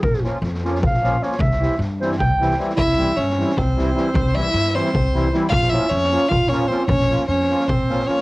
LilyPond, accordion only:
\new Staff \with { instrumentName = "Accordion" } { \time 7/8 \tempo 4 = 153 r8 <f bes des' f'>8 r8 <f bes des' f'>8 r8 <f bes des' f'>8 <f bes des' f'>8 | r8 <e g c' e'>8 r8 <e g c' e'>8 r8 <e g c' e'>8 <e g c' e'>8 | r8 <e g c' e'>8 r8 <e g c' e'>8 r8 <e g c' e'>8 <e g c' e'>8 | r8 <e g c' e'>8 r8 <e g c' e'>8 r8 <e g c' e'>8 <e g c' e'>8 |
r8 <f bes des' f'>8 r8 <f bes des' f'>8 r8 <f bes des' f'>8 <f bes des' f'>8 | r8 <f bes des' f'>8 r8 <f bes des' f'>8 r8 <f bes des' f'>8 <f bes des' f'>8 | }